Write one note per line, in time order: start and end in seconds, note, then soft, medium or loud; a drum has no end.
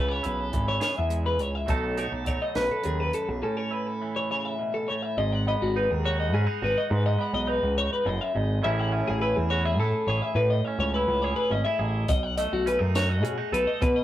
0.00 0.19 C#2 medium
0.00 0.52 C#3 medium
0.00 0.52 E3 medium
0.00 0.11 B4 medium
0.08 1.68 B3 soft
0.08 0.26 C#5 medium
0.23 0.50 B1 medium
0.23 1.65 E4 medium
0.23 0.40 B4 medium
0.23 closed hi-hat soft
0.40 0.68 A4 medium
0.53 0.78 G#1 medium
0.53 1.67 E3 medium
0.53 kick medium
0.53 closed hi-hat medium
0.68 0.81 C#5 medium
0.80 1.65 G#4 medium
0.80 0.97 C#5 medium
0.80 snare loud
0.80 closed hi-hat medium
0.98 1.41 E2 medium
0.98 1.26 E5 medium
1.09 1.65 G#2 medium
1.09 closed hi-hat medium
1.26 1.40 B4 medium
1.39 1.65 C#2 medium
1.39 1.55 C#5 medium
1.39 closed hi-hat medium
1.55 1.70 E5 medium
1.66 2.06 B1 medium
1.66 2.84 B2 medium
1.66 2.24 F#3 medium
1.66 3.43 A3 soft
1.66 1.96 D#4 medium
1.66 2.55 A4 medium
1.66 1.98 A4 medium
1.66 kick medium
1.66 closed hi-hat medium
1.97 3.39 D#4 medium
1.97 2.13 C#5 medium
1.97 closed hi-hat medium
2.12 2.37 B1 medium
2.12 2.27 A4 medium
2.25 3.39 F#3 medium
2.25 2.42 C#5 medium
2.25 kick medium
2.25 closed hi-hat medium
2.42 2.57 D#5 medium
2.55 2.68 B1 medium
2.55 3.40 B4 medium
2.55 2.71 B4 medium
2.55 snare medium
2.55 closed hi-hat medium
2.71 2.85 A4 medium
2.83 3.10 D#2 medium
2.83 3.42 F#2 medium
2.83 3.00 G#4 medium
2.83 closed hi-hat medium
3.00 3.14 B4 medium
3.13 3.29 A4 medium
3.13 closed hi-hat medium
3.29 3.41 B1 medium
3.29 3.43 G#4 medium
3.43 4.88 A2 medium
3.43 5.13 C#4 soft
3.43 3.57 A4 medium
3.57 3.72 C#5 medium
3.71 5.13 E4 medium
3.71 3.87 B4 medium
3.87 4.16 A4 medium
4.02 5.17 E3 medium
4.16 4.30 C#5 medium
4.30 4.58 C#3 medium
4.30 4.45 C#5 medium
4.45 4.74 E5 medium
4.59 4.88 B2 medium
4.74 4.88 A4 medium
4.88 5.18 A2 medium
4.88 5.02 C#5 medium
5.02 5.17 E5 medium
5.17 5.54 G#1 medium
5.17 6.87 G#2 medium
5.17 5.32 D#5 medium
5.32 5.46 F#5 medium
5.47 7.18 B3 medium
5.47 5.61 D#5 medium
5.62 5.85 G#1 medium
5.62 5.76 F#4 medium
5.76 6.33 D#4 medium
5.76 5.91 B4 medium
5.91 6.33 D#2 medium
5.91 6.04 G#4 medium
6.05 6.61 F#4 medium
6.05 6.19 C#5 medium
6.20 6.33 D#5 medium
6.33 6.45 G#2 medium
6.33 6.47 C#4 medium
6.33 6.62 G#4 medium
6.47 6.90 D#4 medium
6.62 6.74 G#1 medium
6.62 8.64 F#4 medium
6.62 6.77 B4 medium
6.78 6.92 D#5 medium
6.90 8.05 G#2 medium
6.90 7.15 G#2 loud
6.90 7.05 B4 medium
7.06 7.21 D#5 medium
7.19 8.63 B3 medium
7.19 7.34 F#5 medium
7.33 7.58 B1 medium
7.33 7.49 D#5 medium
7.47 8.60 D#4 medium
7.47 7.77 B4 medium
7.63 7.87 C#2 medium
7.78 7.92 C#5 medium
7.93 8.07 B4 medium
8.05 8.18 F#1 medium
8.05 8.34 F#2 medium
8.05 8.21 D#5 medium
8.21 8.36 E5 medium
8.35 8.59 G#1 medium
8.35 8.61 G#2 medium
8.35 8.64 D#5 medium
8.62 9.01 A1 medium
8.62 10.32 A2 medium
8.62 12.09 E3 medium
8.62 8.92 C#4 medium
8.62 9.21 E4 medium
8.62 9.50 G#4 medium
8.62 8.79 E5 medium
8.79 8.93 F#5 medium
8.92 10.33 C#4 medium
8.92 9.07 E5 medium
9.08 9.33 A1 medium
9.08 9.21 G#4 medium
9.21 9.79 E4 medium
9.21 9.36 B4 medium
9.36 9.79 E2 medium
9.36 9.50 G#4 medium
9.50 9.65 F#4 medium
9.50 9.64 C#5 medium
9.65 10.08 G#4 medium
9.65 9.79 E5 medium
9.79 9.91 A2 medium
9.79 10.34 E4 medium
9.79 10.08 A4 medium
10.07 10.19 A1 medium
10.07 10.34 G#4 medium
10.07 10.22 C#5 medium
10.22 10.36 E5 medium
10.35 10.60 A2 medium
10.35 12.06 A2 medium
10.35 10.50 B4 medium
10.50 10.65 D#5 medium
10.65 11.50 C#4 medium
10.65 10.79 E5 medium
10.78 11.03 C#2 medium
10.78 10.94 C#5 medium
10.94 11.51 E4 medium
10.94 11.22 B4 medium
11.08 11.32 C#2 medium
11.22 11.78 G#4 medium
11.22 11.36 C#5 medium
11.36 11.51 B4 medium
11.50 11.63 G#1 medium
11.50 11.66 C#4 medium
11.50 11.64 D#5 medium
11.65 12.09 E4 medium
11.65 11.80 E5 medium
11.79 12.04 A1 medium
11.79 12.05 G#4 medium
11.79 12.08 D#5 medium
12.08 12.46 B1 medium
12.08 13.80 B2 medium
12.08 12.23 D#5 medium
12.08 kick loud
12.08 closed hi-hat medium
12.23 12.37 F#5 medium
12.38 14.04 A3 medium
12.38 12.52 D#5 medium
12.38 closed hi-hat medium
12.52 12.77 B1 medium
12.52 12.67 F#4 medium
12.66 12.79 C#4 medium
12.66 12.81 B4 medium
12.66 closed hi-hat medium
12.79 13.24 F#2 medium
12.79 13.23 D#4 medium
12.79 12.95 G#4 medium
12.95 13.52 F#4 medium
12.95 13.09 C#5 medium
12.95 snare loud
12.95 closed hi-hat medium
13.09 13.24 D#5 medium
13.23 13.36 B2 medium
13.23 13.38 C#4 medium
13.23 13.53 G#4 medium
13.23 closed hi-hat medium
13.38 13.82 D#4 medium
13.52 13.65 B1 medium
13.52 13.84 A4 medium
13.52 13.68 B4 medium
13.52 closed hi-hat medium
13.67 13.82 D#5 medium
13.81 14.04 B2 medium
13.81 14.04 B2 loud
13.81 13.96 B4 medium
13.81 kick loud
13.81 closed hi-hat medium
13.96 14.04 D#5 medium